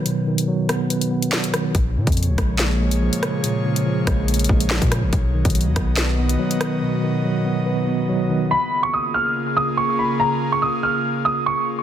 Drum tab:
HH |x-----x-----x---x-x---x---x-x---|x-----xxxx--x---x-----x---x-x---|x-----x-----x---xxxx--x---x-x---|x-----xxxx--x---x-----x---x-x---|
CP |------------------------x-------|----------------x---------------|------------------------x-------|----------------x---------------|
SD |------------r-----------o---r---|------------r---o-----------r---|------------r-----------o---r---|------------r---o-----------r---|
BD |--------------------------------|o-----o-----o-------------------|------------o-------o-----o-----|o-----o-----o-------------------|

HH |--------------------------------|--------------------------------|--------------------------------|
CP |--------------------------------|--------------------------------|--------------------------------|
SD |--------------------------------|--------------------------------|--------------------------------|
BD |--------------------------------|--------------------------------|--------------------------------|